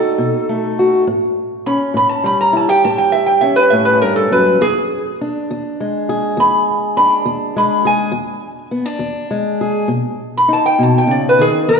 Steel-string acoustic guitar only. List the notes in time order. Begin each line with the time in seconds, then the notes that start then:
Already playing: A3 D#4 F#4
0.18 B2
0.49 A3
0.79 F#4
1.07 A2
1.66 C#4
1.94 A2
2.24 G3
2.53 E4
2.69 G4
2.85 A2
3.42 C#4
3.72 A2
4.02 G2
4.31 F#2
4.61 E2
5.21 D4
5.51 E2
5.80 G#3
6.09 G#4
6.37 E2
6.97 D4
7.25 E2
7.56 G#3
7.85 G#4
8.12 E2
8.71 B3
8.86 D4
8.99 E2
9.31 G#3
9.61 G#4
9.88 B2
10.48 D#4
10.79 B2
11.07 C#3
11.39 D#3
11.68 E2